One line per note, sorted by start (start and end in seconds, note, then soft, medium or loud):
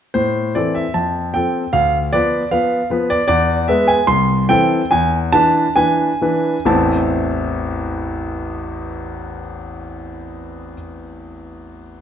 0.14 0.54 A2 soft
0.14 0.54 C5 medium
0.55 0.84 E3 soft
0.55 0.84 C4 soft
0.55 0.85 A4 soft
0.55 0.75 D5 medium
0.75 0.95 E5 medium
0.94 1.33 F2 soft
0.94 1.34 A5 medium
1.34 1.63 F3 soft
1.34 1.62 C4 soft
1.34 1.63 A4 soft
1.34 1.73 G5 medium
1.73 2.11 D2 medium
1.73 1.96 F5 medium
2.13 2.41 F3 soft
2.13 2.41 B3 soft
2.13 2.42 B4 medium
2.13 2.48 D5 medium
2.51 2.79 F3 soft
2.51 2.80 B3 soft
2.51 2.80 B4 soft
2.51 2.86 F5 medium
2.90 3.18 F3 soft
2.90 3.19 B3 soft
2.90 3.19 B4 soft
3.10 3.26 D5 medium
3.28 3.67 E2 medium
3.28 3.68 D5 loud
3.68 3.98 G#3 medium
3.68 3.98 B3 soft
3.68 3.98 B4 soft
3.68 3.88 E5 medium
3.88 4.08 G#5 medium
4.07 4.48 C2 medium
4.07 4.45 C6 medium
4.49 4.80 E3 medium
4.49 4.80 C4 soft
4.49 4.80 A4 medium
4.49 4.87 G5 medium
4.91 5.33 E2 medium
4.91 5.16 G#5 medium
5.33 5.65 E3 soft
5.33 5.65 D4 soft
5.33 5.65 B4 medium
5.33 5.73 A5 loud
5.76 6.09 E3 soft
5.76 6.09 D4 soft
5.76 6.10 B4 soft
5.76 6.67 G#5 medium
6.22 6.55 E3 soft
6.22 6.55 D4 soft
6.22 6.55 B4 soft
6.65 10.73 A1 medium
6.65 10.74 E2 soft
6.65 10.73 E3 medium
6.65 10.74 A3 medium
6.65 10.74 C4 soft
6.65 10.75 E4 medium
6.65 10.74 A5 medium